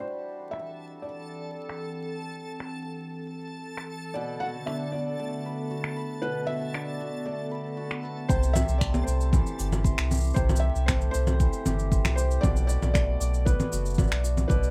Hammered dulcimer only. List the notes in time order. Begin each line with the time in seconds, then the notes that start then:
Already playing: D3 G3 D4 E4 F#4 B4
4.15 B2
4.41 F#4
4.67 D4
4.93 F#4
5.19 A3
5.46 B4
5.71 F#4
5.96 B4
6.23 B2
6.48 F#4
6.74 D4
7.00 F#4
7.25 A3
7.51 B4
7.77 F#4
8.03 B4
8.29 C3 C5
8.55 G4
8.81 A3
9.07 C5
9.33 E3
9.58 G4
9.84 C5
10.10 G4
10.36 C3 C5
10.62 G4
10.88 A3
11.15 C5
11.41 E3
11.66 G4
11.92 C5
12.18 G4
12.44 B2 D5
12.69 F#4
12.94 A3
13.20 D5
13.46 B3
13.72 F#4
13.98 D5
14.24 F#4
14.49 B2 D5